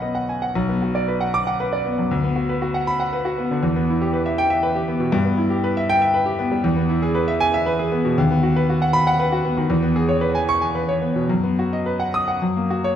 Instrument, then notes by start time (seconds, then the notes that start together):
grand piano
Already playing: B1 B3 D#5 F#5 B5 C#6
0.02 B3 D#5
0.15 F#5
0.29 G#5
0.42 F#5
0.55 B1
0.69 B3
0.82 F#4
0.95 D5
1.08 B4
1.21 F#5
1.34 D6
1.47 F#5
1.60 B4
1.73 D5
1.86 B3
1.98 F#2
2.11 D2
2.24 B3
2.36 F#4
2.49 B4
2.62 F#4
2.74 F#5
2.87 B5
3.00 F#5
3.13 B4
3.25 F#4
3.38 B3
3.51 D3
3.63 E2
3.76 B3
3.90 E4
4.01 G4
4.13 B4
4.26 E5
4.38 G5
4.50 E5
4.63 B4
4.75 G4
4.88 B3
5.00 B2
5.12 G2
5.25 B3
5.37 E4
5.50 G4
5.64 B4
5.77 E5
5.89 G5
6.02 E5
6.14 B4
6.26 G4
6.39 B3
6.52 G3
6.64 E2
6.76 B3
6.89 E4
7.02 G#4
7.15 B4
7.28 E5
7.40 G#5
7.54 E5
7.66 B4
7.79 G#4
7.92 B3
8.05 B2
8.18 D#2
8.31 B3
8.43 F#4
8.56 B4
8.70 F#4
8.82 F#5
8.93 B5
9.07 F#5
9.20 B4
9.32 F#4
9.45 B3
9.57 D#3
9.70 E2
9.83 B3
9.96 G#4
10.09 C#5
10.21 B4
10.35 G#5
10.49 C#6
10.61 G#5
10.75 B4
10.89 C#5
11.02 B3
11.16 B2
11.29 F#2
11.43 B3
11.59 F#4
11.73 D#5
11.86 B4
12.00 F#5
12.14 D#6
12.28 F#5
12.42 F#2
12.56 A#3
12.70 F#4
12.84 C#5